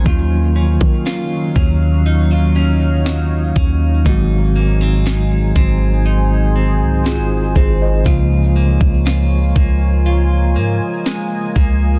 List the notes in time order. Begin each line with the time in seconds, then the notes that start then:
Already playing: C#4 C5
0.04 D#2 D#3 F3 F#3 A#3 C#4 D#4 F4 C#5 F5, kick, closed hi-hat
0.09 F#3 F4
0.56 C#4
0.81 D#3, kick
1.06 F4, snare, closed hi-hat
1.56 D#2 C#4, kick
2.06 D#4, closed hi-hat
2.31 F4
2.56 C#4
3.06 F#3, snare, closed hi-hat
3.56 D#2 C#4, kick, closed hi-hat
4.04 G#1 G#2 D#3 F#3 G#3 B3 D#4 G#4 C5 G#5, kick, closed hi-hat
4.09 F#4
4.14 C4
4.56 A#3
4.81 C4
5.06 D#4, snare, closed hi-hat
5.56 G#1 C4, kick
6.06 D#4, closed hi-hat
6.56 C4
6.81 C2
7.06 F#3 F4 G#4, snare, closed hi-hat
7.19 G#1
7.56 G#1 C4 G#4 C5, kick, closed hi-hat
7.82 C5 D#5
8.04 C#2 C#3 F3 G#3 A#3 F4 A#4 C#5 G#5, kick, closed hi-hat
8.09 F4
8.56 A#3
8.81 C#2, kick
9.06 F4, snare, closed hi-hat
9.56 C#2 A#3, kick
10.06 F4 D#5, closed hi-hat
10.56 G#2 A#3
11.06 G#3, snare, closed hi-hat
11.56 C#2 A#3, kick, closed hi-hat